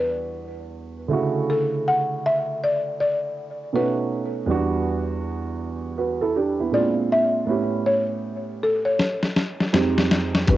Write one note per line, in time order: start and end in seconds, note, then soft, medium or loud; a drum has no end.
0.00 1.05 E2 medium
0.00 1.06 G3 medium
0.00 1.07 B3 medium
0.00 1.07 D4 medium
0.00 1.08 F#4 medium
0.00 1.07 B4 medium
1.08 3.69 C#3 medium
1.08 3.68 D3 medium
1.08 3.69 A3 medium
1.08 3.70 E4 medium
1.13 3.71 F#4 medium
1.50 1.84 A4 medium
1.88 2.26 F#5 loud
2.26 2.63 E5 loud
2.64 2.80 D5 medium
3.00 3.70 D5 medium
3.73 4.48 B2 medium
3.73 4.48 A3 medium
3.73 4.49 C#4 medium
3.73 4.49 D#4 medium
3.73 4.49 F#4 medium
3.73 4.32 B4 medium
4.46 6.68 E2 medium
4.46 6.69 G3 medium
4.46 5.96 B3 medium
4.46 5.96 D4 medium
4.51 5.97 F#4 medium
5.98 6.21 F#4 medium
5.98 6.21 B4 medium
6.21 6.35 E4 medium
6.21 6.35 A4 medium
6.36 6.59 D4 medium
6.36 6.59 G4 medium
6.60 6.96 B3 soft
6.60 6.96 E4 medium
6.71 7.48 A#2 medium
6.71 7.48 G#3 medium
6.71 7.49 C4 medium
6.71 7.49 D4 medium
6.71 7.49 F4 medium
6.71 6.91 D5 medium
7.12 7.89 E5 loud
7.45 9.68 A2 medium
7.45 9.69 B3 medium
7.45 9.69 C#4 medium
7.45 9.70 E4 medium
7.50 9.70 G4 medium
7.86 8.63 C#5 medium
8.63 8.84 A4 medium
8.85 9.94 C#5 medium
8.99 snare medium
9.23 snare soft
9.36 snare medium
9.60 snare medium
9.73 10.48 F2 medium
9.73 10.48 G#3 medium
9.73 10.49 C4 medium
9.73 10.49 D#4 medium
9.73 10.45 G4 medium
9.73 snare medium
9.98 snare medium
10.11 snare loud
10.35 snare medium
10.47 10.57 E2 medium
10.47 10.57 B3 medium
10.47 10.57 D4 medium
10.47 10.57 G4 medium
10.47 10.57 B4 medium
10.47 kick loud
10.47 closed hi-hat medium
10.52 10.57 F#4 medium